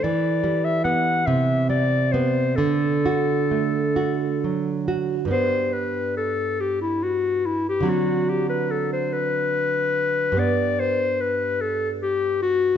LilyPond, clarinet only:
\new Staff \with { instrumentName = "Clarinet" } { \time 6/8 \key g \major \tempo 4. = 47 d''8. e''16 fis''8 e''8 d''8 c''8 | a'2~ a'8 r8 | c''8 b'8 a'8 g'16 e'16 fis'8 e'16 g'16 | fis'8 g'16 b'16 a'16 c''16 b'4. |
d''8 c''8 b'8 a'8 g'8 fis'8 | }